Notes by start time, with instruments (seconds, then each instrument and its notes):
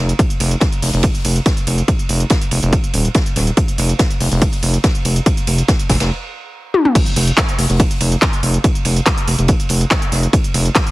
0.00 analog synth bass F1
0.09 closed hi-hat
0.19 kick, closed hi-hat, ride
0.30 closed hi-hat
0.40 analog synth bass F1, open hi-hat, ride
0.51 closed hi-hat
0.60 kick, snare, closed hi-hat, ride
0.72 closed hi-hat
0.82 analog synth bass F1, open hi-hat
0.94 analog synth bass F1, closed hi-hat
1.03 kick, closed hi-hat, ride
1.15 closed hi-hat
1.25 analog synth bass F1, open hi-hat, ride
1.36 closed hi-hat
1.46 kick, snare, closed hi-hat, ride
1.57 closed hi-hat
1.67 analog synth bass F1, open hi-hat, ride
1.78 closed hi-hat
1.88 kick, closed hi-hat, ride
1.99 closed hi-hat
2.09 analog synth bass F1, open hi-hat, ride
2.20 closed hi-hat
2.30 kick, snare, closed hi-hat, ride
2.41 closed hi-hat, ride
2.51 analog synth bass F1, open hi-hat, ride
2.63 analog synth bass F1, closed hi-hat, ride
2.73 kick, closed hi-hat, ride
2.84 closed hi-hat
2.93 analog synth bass D#1, open hi-hat, ride
3.05 closed hi-hat
3.14 kick, snare, closed hi-hat, ride
3.26 closed hi-hat
3.36 analog synth bass D#1, snare, open hi-hat, ride
3.47 closed hi-hat
3.57 kick, closed hi-hat, ride
3.68 closed hi-hat
3.78 analog synth bass F1, open hi-hat, ride
3.89 closed hi-hat
3.99 kick, snare, closed hi-hat, ride
4.11 closed hi-hat
4.20 analog synth bass F1, open hi-hat
4.32 analog synth bass F1, closed hi-hat
4.41 kick, closed hi-hat, ride
4.53 closed hi-hat
4.63 analog synth bass F1, open hi-hat, ride
4.74 closed hi-hat
4.84 kick, snare, closed hi-hat, ride
4.95 closed hi-hat
5.05 analog synth bass F1, open hi-hat, ride
5.16 closed hi-hat
5.26 kick, closed hi-hat, ride
5.37 closed hi-hat
5.47 analog synth bass F1, open hi-hat, ride
5.58 closed hi-hat
5.68 kick, snare, closed hi-hat, ride
5.79 closed hi-hat, ride
5.89 analog synth bass F1, kick, snare, open hi-hat, ride
6.00 analog synth bass F1, snare, closed hi-hat, ride
6.74 high tom
6.85 mid tom
6.95 kick, closed hi-hat, crash, ride
7.06 closed hi-hat
7.16 analog synth bass F1, open hi-hat, ride
7.27 closed hi-hat
7.37 kick, snare, clap, closed hi-hat, ride
7.49 closed hi-hat
7.59 analog synth bass F1, open hi-hat
7.70 analog synth bass F1, closed hi-hat
7.80 kick, closed hi-hat, ride
7.91 closed hi-hat
8.00 analog synth bass F1, open hi-hat, ride
8.12 closed hi-hat
8.22 kick, snare, clap, closed hi-hat, ride
8.33 closed hi-hat
8.43 analog synth bass F1, open hi-hat, ride
8.54 closed hi-hat
8.64 kick, closed hi-hat, ride
8.75 closed hi-hat
8.85 analog synth bass F1, open hi-hat, ride
8.96 closed hi-hat
9.06 kick, snare, clap, closed hi-hat, ride
9.18 closed hi-hat, ride
9.28 analog synth bass F1, open hi-hat, ride
9.38 analog synth bass F1, closed hi-hat, ride
9.48 kick, closed hi-hat, ride
9.60 closed hi-hat
9.69 analog synth bass F1, open hi-hat, ride
9.81 closed hi-hat
9.91 kick, snare, clap, closed hi-hat, ride
10.02 closed hi-hat
10.12 analog synth bass F1, snare, open hi-hat, ride
10.23 closed hi-hat
10.33 kick, closed hi-hat, ride
10.44 closed hi-hat
10.54 analog synth bass F1, open hi-hat, ride
10.65 closed hi-hat
10.75 kick, snare, clap, closed hi-hat, ride
10.87 closed hi-hat